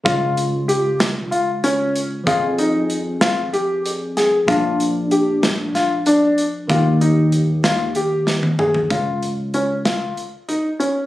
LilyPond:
<<
  \new Staff \with { instrumentName = "Grand piano" } { \time 7/8 \key des \lydian \tempo 4 = 95 f'4 g'4 f'8 des'4 | f'8 ees'4 f'8 g'4 aes'8 | f'4 g'4 f'8 d'4 | f'8 ees'4 f'8 g'4 aes'8 |
f'4 des'8 f'4 ees'8 des'8 | }
  \new Staff \with { instrumentName = "Tine electric piano" } { \time 7/8 \key des \lydian <des aes f'>2.~ <des aes f'>8 | <f c' aes'>2.~ <f c' aes'>8 | <bes, f d'>2.~ <bes, f d'>8 | <ees bes g'>2.~ <ees bes g'>8 |
r2. r8 | }
  \new Staff \with { instrumentName = "Fretless electric bass" } { \clef bass \time 7/8 \key des \lydian des,2 r4. | f,2 r4. | bes,,2 r4. | ees,2 r4. |
des,2 r4. | }
  \new DrumStaff \with { instrumentName = "Drums" } \drummode { \time 7/8 <hh bd>8 hh8 hh8 <hh sn>8 hh8 hh8 hh8 | <hh bd>8 hh8 hh8 <hh sn>8 hh8 hh8 <hh sn>8 | <hh bd>8 hh8 hh8 <hh sn>8 <hh sn>8 hh8 hh8 | <hh bd>8 hh8 hh8 <hh sn>8 hh8 sn16 tommh16 toml16 tomfh16 |
<hh bd>8 hh8 hh8 <hh sn>8 hh8 hh8 hh8 | }
>>